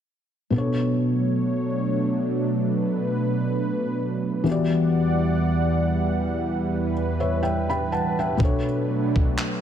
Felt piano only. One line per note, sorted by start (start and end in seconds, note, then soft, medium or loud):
0.50 4.41 B2 medium
0.50 4.42 B3 medium
0.50 4.43 D4 medium
0.56 4.44 A4 medium
0.56 4.45 C#5 medium
4.44 8.35 E3 medium
4.44 8.36 B3 medium
4.44 8.36 F#4 medium
4.49 8.37 G4 medium
4.49 6.91 D5 medium
7.20 7.41 C#5 medium
7.20 7.41 E5 medium
7.43 7.68 E5 medium
7.43 7.67 G5 medium
7.69 7.91 G5 medium
7.69 7.90 B5 medium
7.92 8.17 F#5 medium
7.92 8.17 A5 medium
8.19 8.65 E5 medium
8.19 8.65 G5 medium
8.37 9.61 B2 medium
8.37 9.61 B3 medium
8.37 9.61 D4 medium
8.43 9.61 A4 medium
8.43 9.61 C#5 medium